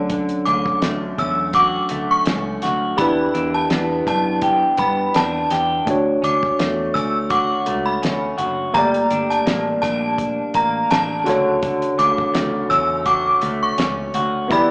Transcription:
Already playing: picked electric bass D2, clean electric guitar D3 D4, tine electric piano F#3 C#4 D4 A4
0.10 clean electric guitar D3, kick, closed hi-hat
0.29 closed hi-hat
0.45 picked electric bass D2, clean electric guitar C#4, synth bell D6, closed hi-hat
0.66 kick
0.82 picked electric bass D2, clean electric guitar A3, snare, closed hi-hat
1.18 picked electric bass E2, clean electric guitar C#4, synth bell E6, kick, closed hi-hat
1.53 clean electric guitar F#4, synth bell D6, kick, closed hi-hat
1.89 picked electric bass D2, clean electric guitar A3, closed hi-hat
2.11 synth bell C#6
2.26 picked electric bass C#2, clean electric guitar C#4, snare, closed hi-hat
2.62 picked electric bass D2, clean electric guitar F#4, snare, closed hi-hat
2.97 picked electric bass E2, clean electric guitar E3, tine electric piano D4 E4 G4, synth bell B5, kick, closed hi-hat
3.02 tine electric piano B4
3.34 picked electric bass E2, clean electric guitar D4, closed hi-hat
3.54 synth bell A5
3.70 picked electric bass E2, clean electric guitar B3, snare, closed hi-hat
4.07 picked electric bass F#2, clean electric guitar D4, synth bell A5, kick, closed hi-hat
4.42 clean electric guitar G4, kick, closed hi-hat
4.77 picked electric bass G2, clean electric guitar B3, synth bell B5, kick, closed hi-hat
5.14 picked electric bass E2, clean electric guitar D4, synth bell A5, snare, closed hi-hat
5.50 picked electric bass E2, clean electric guitar G4, snare, closed hi-hat
5.85 picked electric bass D2, tine electric piano A3 D4 F#4, kick, closed hi-hat
5.90 tine electric piano C#5
6.22 picked electric bass D2, clean electric guitar C#4, synth bell D6, closed hi-hat
6.43 kick
6.59 picked electric bass E2, clean electric guitar A3, snare, closed hi-hat
6.94 picked electric bass D2, clean electric guitar C#4, synth bell E6, kick, closed hi-hat
7.30 clean electric guitar F#4, synth bell D6, kick, closed hi-hat
7.66 picked electric bass C#2, clean electric guitar A3, closed hi-hat
7.86 synth bell B5
8.02 picked electric bass D2, clean electric guitar C#4, snare, closed hi-hat
8.38 picked electric bass F#1, clean electric guitar F#4, closed hi-hat
8.73 picked electric bass G1, clean electric guitar G3, tine electric piano A3 A#3 G4, synth bell A#5, kick, closed hi-hat
8.78 tine electric piano D5
8.94 closed hi-hat
9.10 picked electric bass G1, clean electric guitar D4, closed hi-hat
9.30 synth bell A5, closed hi-hat
9.46 picked electric bass A1, clean electric guitar A#3, snare, closed hi-hat
9.82 picked electric bass A#1, clean electric guitar D4, synth bell A5, kick, closed hi-hat
10.18 kick, closed hi-hat
10.54 picked electric bass A1, clean electric guitar A#3, synth bell A#5, kick, closed hi-hat
10.90 picked electric bass A1, clean electric guitar D4, synth bell A5, snare, closed hi-hat
11.24 picked electric bass D2, tine electric piano C#3 F#4 A4, clean electric guitar D3, closed hi-hat
11.29 tine electric piano C#5, snare
11.62 clean electric guitar D3, kick, closed hi-hat
11.82 closed hi-hat
11.98 picked electric bass D2, clean electric guitar C#4, synth bell D6, closed hi-hat
12.18 kick
12.33 picked electric bass D2, clean electric guitar A3, snare, closed hi-hat
12.70 picked electric bass E2, clean electric guitar C#4, synth bell E6, kick, closed hi-hat
13.06 clean electric guitar F#4, synth bell D6, kick, closed hi-hat
13.41 picked electric bass D2, clean electric guitar A3, closed hi-hat
13.63 synth bell C#6
13.78 picked electric bass C#2, clean electric guitar C#4, snare, closed hi-hat
14.14 picked electric bass D2, clean electric guitar F#4, closed hi-hat
14.48 picked electric bass E2, clean electric guitar E3, tine electric piano B3 E4 G4, synth bell B5, kick, closed hi-hat
14.53 tine electric piano D5

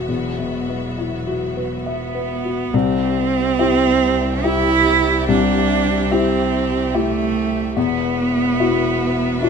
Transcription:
Already playing: double bass E1, grand piano B3 E4 F#4 B4 E5, string section B3 F#4 E5
0.08 grand piano E2, cello F#3
0.38 grand piano B2
0.69 grand piano B3
0.98 grand piano E4
1.27 grand piano F#4
1.56 grand piano B4
1.85 cello B3, grand piano E5
2.14 grand piano B4
2.45 grand piano F#4
2.73 double bass C2, grand piano C2, string section G3 G4 E5, cello C4
3.59 grand piano E4 G4
4.44 grand piano E4 G4, cello E4
5.28 grand piano C2, cello D4
6.11 cello C4, grand piano E4 G4
6.94 cello A3, grand piano E4 G4
7.75 double bass E1, grand piano E2, cello B3, string section F#4 B4 E5
8.60 grand piano E4 F#4
9.41 cello D4, grand piano E4 F#4

